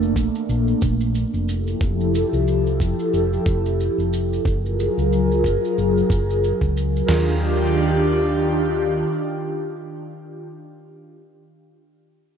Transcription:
Already playing: fingered electric bass F1, analog synth pad A3 A#3 D4
0.02 shaker
0.16 fingered electric bass A#1, kick, shaker
0.35 shaker
0.49 fingered electric bass A#1, shaker
0.68 shaker
0.82 fingered electric bass A#1, kick, shaker
1.01 shaker
1.15 shaker
1.34 fingered electric bass F1, shaker
1.48 analog synth pad F3 E4 G4 A4, shaker
1.67 shaker
1.81 fingered electric bass F1, kick, shaker
2.01 shaker
2.15 shaker
2.33 fingered electric bass C2, shaker
2.48 shaker
2.67 shaker
2.80 fingered electric bass F1, kick, shaker
2.99 shaker
3.13 fingered electric bass F1, shaker
3.33 shaker
3.46 fingered electric bass F1, kick, shaker
3.66 shaker
3.80 shaker
3.98 fingered electric bass F1, shaker
4.13 shaker
4.33 shaker
4.44 fingered electric bass F#1, analog synth pad F#3 F4 G#4 A#4, kick, shaker
4.66 shaker
4.80 shaker
4.98 fingered electric bass C#2, shaker
5.13 shaker
5.31 shaker
5.44 fingered electric bass F#1, kick, shaker
5.65 shaker
5.78 fingered electric bass F#1, shaker
5.97 shaker
6.10 fingered electric bass F#1, kick, shaker
6.30 shaker
6.44 shaker
6.61 fingered electric bass C#2, kick, shaker
6.77 shaker
6.96 shaker
7.07 fingered electric bass D#2, analog synth pad D#3 D4 F4 G4, snare, floor tom, crash

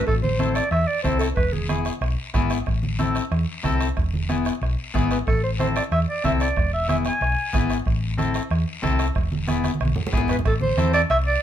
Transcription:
0.07 fingered electric bass A1, clarinet A4, bombo low, bombo rim, long guiro
0.23 clarinet C5, high conga
0.39 clean electric guitar C4 E4 A4, bombo rim, high conga, short guiro
0.55 clarinet D5, bombo rim, short guiro
0.71 fingered electric bass E2, clarinet E5, bombo rim, long guiro
0.87 clarinet D5
1.03 fingered electric bass C2, clean electric guitar C4 E4 A4, clarinet C5, bombo low, bombo rim, high conga, short guiro
1.19 clarinet A4, bombo rim, short guiro
1.36 fingered electric bass E1, clarinet B4, bombo low, bombo rim, long guiro
1.53 clarinet G#4, high conga
1.68 clean electric guitar B3 E4 G#4, bombo rim, high conga, short guiro
1.85 bombo rim, short guiro
2.01 fingered electric bass B1, bombo rim, long guiro
2.34 fingered electric bass G#1, clean electric guitar B3 E4 G#4, bombo low, bombo rim, high conga, short guiro
2.50 bombo rim, short guiro
2.66 fingered electric bass A1, bombo low, bombo rim, long guiro
2.83 high conga
2.99 clean electric guitar C4 E4 A4, bombo rim, high conga, short guiro
3.15 bombo rim, short guiro
3.31 fingered electric bass E2, bombo rim, long guiro
3.64 fingered electric bass C2, clean electric guitar C4 E4 A4, bombo low, bombo rim, high conga, short guiro
3.81 bombo rim, short guiro
3.97 fingered electric bass E1, bombo low, bombo rim, long guiro
4.13 high conga
4.29 clean electric guitar B3 E4 G#4, bombo rim, high conga, short guiro
4.45 bombo rim, short guiro
4.62 fingered electric bass B1, bombo rim, long guiro
4.94 fingered electric bass G#1, clean electric guitar B3 E4 G#4, bombo low, bombo rim, high conga, short guiro
5.11 clarinet B4, bombo rim, short guiro
5.27 fingered electric bass A1, clarinet A4, bombo low, bombo rim, long guiro
5.44 clarinet C5
5.59 clean electric guitar C4 E4 A4, clarinet C5, bombo rim, high conga, short guiro
5.76 clarinet D5, bombo rim, short guiro
5.92 fingered electric bass E2, clarinet E5, bombo rim, long guiro
6.08 clarinet D5
6.24 fingered electric bass C2, clean electric guitar C4 E4 A4, clarinet E5, bombo low, bombo rim, high conga, short guiro
6.40 clarinet D5, bombo rim, short guiro
6.56 fingered electric bass E1, bombo low, bombo rim, long guiro
6.73 clarinet E5
6.88 clean electric guitar B3 E4 G#4, clarinet E5, bombo rim, high conga, short guiro
7.05 clarinet G#5, bombo rim, short guiro
7.21 fingered electric bass B1, bombo rim, long guiro
7.53 fingered electric bass G#1, clean electric guitar B3 E4 G#4, bombo low, bombo rim, high conga, short guiro
7.70 bombo rim, short guiro
7.85 fingered electric bass A1, bombo low, bombo rim, long guiro
8.18 clean electric guitar C4 E4 A4, bombo rim, high conga, short guiro
8.34 bombo rim, short guiro
8.51 fingered electric bass E2, bombo rim, long guiro
8.82 fingered electric bass C2, clean electric guitar C4 E4 A4, bombo low, bombo rim, high conga, short guiro
8.99 bombo rim, short guiro
9.15 fingered electric bass E1, bombo low, bombo rim, long guiro
9.32 high conga
9.47 clean electric guitar B3 E4 G#4, bombo rim, high conga, short guiro
9.64 bombo rim, high conga, short guiro
9.75 high conga
9.80 fingered electric bass B1, bombo rim, long guiro
9.85 high conga
9.96 low conga
10.07 low conga
10.12 fingered electric bass G#1, clean electric guitar B3 E4 G#4, bombo low, bombo rim, short guiro
10.17 low conga
10.28 clarinet B4, bombo rim, low conga, short guiro
10.39 low conga
10.45 fingered electric bass A1, clarinet A4, bombo low, bombo rim, high timbale, long guiro
10.61 clarinet C5, high conga
10.77 fingered electric bass E2, clean electric guitar C4 E4 A4, bombo rim, high conga, high timbale, short guiro
10.93 clarinet D5, bombo rim, high timbale, short guiro
11.10 fingered electric bass C2, clarinet E5, bombo rim, high timbale, long guiro
11.27 clarinet D5

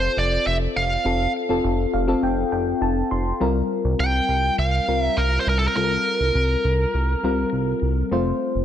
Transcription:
Already playing: fm electric piano C4 F4 A4 C5, lead electric guitar C5
0.17 analog synth bass F1, lead electric guitar D5
0.46 analog synth bass F1, lead electric guitar E5
0.76 analog synth bass F1, lead electric guitar F5
1.05 analog synth bass F1, fm electric piano C4 F4 A4
1.49 analog synth bass F1, fm electric piano C4 F4 A4
1.64 analog synth bass F1
1.93 analog synth bass F1, fm electric piano F5
2.08 fm electric piano C4 F4 A4
2.23 analog synth bass F1, fm electric piano G5
2.52 analog synth bass F1, fm electric piano G5
2.81 analog synth bass F1, fm electric piano A5
3.11 analog synth bass F1, fm electric piano C6
3.40 analog synth bass C2, fm electric piano G3 C4 F4 A#4
3.84 analog synth bass C2
3.99 analog synth bass C2, lead electric guitar G5
4.29 analog synth bass C2
4.58 analog synth bass C2, lead electric guitar F5
4.88 analog synth bass C2, fm electric piano G3 C4 F4 A#4
5.02 lead electric guitar E5
5.17 analog synth bass C2, lead electric guitar A#4
5.40 lead electric guitar C5
5.47 analog synth bass C2, lead electric guitar A#4
5.59 lead electric guitar A4
5.68 lead electric guitar A#4
5.76 analog synth bass C2, fm electric piano G3 C4 F4 A4, lead electric guitar A#4
5.84 fm electric piano A#4
6.20 analog synth bass C2
6.35 analog synth bass C2
6.64 analog synth bass C2
6.94 analog synth bass C2
7.23 analog synth bass C2, fm electric piano G3 C4 F4 A#4
7.52 analog synth bass C2
7.82 analog synth bass C2
8.11 analog synth bass F1, fm electric piano A3 C4 F4 C5
8.55 analog synth bass F1

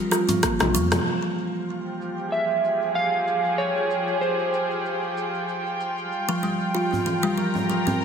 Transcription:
Already playing: electric slide guitar A#4
0.11 kalimba F4, cross-stick, cabasa
0.28 kalimba F3, open hi-hat, djembe bass, cabasa
0.43 kalimba A#3, kick, cross-stick, open hi-hat, cabasa
0.60 sub bass A#1, kalimba E3, cross-stick, open hi-hat, djembe slap, low conga, cabasa
0.74 sub bass F2, kalimba F3, djembe tone, cabasa
0.92 cross-stick, open hi-hat, djembe tone, low conga, cabasa
1.06 string section F3, crash, cabasa
1.24 cabasa
1.38 cabasa
1.53 string section F4, cabasa
1.70 cabasa
1.82 string section G5
1.87 cabasa
1.93 string section G4
2.01 cabasa
2.19 cabasa
2.24 string section G#4
2.32 electric slide guitar E5, cabasa
2.50 cabasa
2.64 cabasa
2.82 cabasa
2.95 electric slide guitar F5, cabasa
3.13 cabasa
3.27 cabasa
3.45 cabasa
3.58 electric slide guitar C#5, cabasa
3.76 cabasa
3.91 cabasa
4.08 cabasa
4.21 electric slide guitar C5, cabasa
4.39 cabasa
4.54 cabasa
4.71 cabasa
4.85 cabasa
5.03 cabasa
5.17 cabasa
5.34 cabasa
5.49 cabasa
5.66 cabasa
5.80 cabasa
5.98 cabasa
6.12 string section G3, cabasa
6.29 kalimba F3, cabasa
6.43 kalimba G3, djembe slap, cabasa
6.61 cabasa
6.75 kalimba F4, cabasa
6.92 djembe slap, djembe bass, cabasa
7.06 kalimba E3, djembe tone, cabasa
7.14 string section A#5
7.23 kalimba G3, cabasa
7.33 string section A#4
7.38 kalimba F3, cabasa
7.55 djembe tone, cabasa
7.69 kalimba F3, djembe slap, cabasa
7.87 kalimba C4, djembe slap, djembe bass, cabasa
8.02 cabasa

